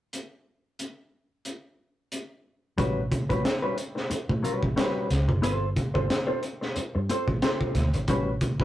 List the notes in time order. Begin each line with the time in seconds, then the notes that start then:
0.13 closed hi-hat
0.79 closed hi-hat
1.45 closed hi-hat
2.12 closed hi-hat
2.78 A1 G3 C#4 F#4 B4, kick, closed hi-hat
3.11 muted clean electric guitar stroke, kick, closed hi-hat
3.29 A1 G3 C#4 F#4 B4, kick, closed hi-hat
3.44 muted clean electric guitar stroke, snare, closed hi-hat
3.62 G3 C#4 F#4 B4
3.77 muted clean electric guitar stroke, closed hi-hat
3.95 muted clean electric guitar stroke, snare
4.10 muted clean electric guitar stroke, muted fingered electric bass stroke, closed hi-hat
4.29 A2, muted clean electric guitar stroke, kick
4.43 G3 C#4 F#4 B4, closed hi-hat
4.63 A1, muted clean electric guitar stroke, kick
4.76 G3 C#4 F#4 B4, snare, closed hi-hat
5.10 C#2, muted clean electric guitar stroke, snare, closed hi-hat
5.28 F#1, muted clean electric guitar stroke, kick
5.42 G1 C4 F4 A4 C5, closed hi-hat
5.76 muted clean electric guitar stroke, kick, closed hi-hat
5.94 G1 C4 F4 A4 C5, kick
6.08 muted clean electric guitar stroke, snare, closed hi-hat
6.27 C4 F4 A4 C5
6.43 muted clean electric guitar stroke, closed hi-hat
6.61 muted clean electric guitar stroke, snare
6.76 muted clean electric guitar stroke, muted fingered electric bass stroke, closed hi-hat
6.95 G2, muted clean electric guitar stroke
7.09 C4 F4 A4 C5, closed hi-hat
7.27 A1, muted clean electric guitar stroke, kick
7.42 C4 F4 A4 C5, snare, closed hi-hat
7.61 kick
7.75 D2, muted clean electric guitar stroke, kick, snare, closed hi-hat
7.93 G#1, muted clean electric guitar stroke, closed hi-hat
8.08 A1 G3 C#4 F#4 B4, kick, closed hi-hat
8.41 muted clean electric guitar stroke, kick, closed hi-hat
8.60 A1 B4, kick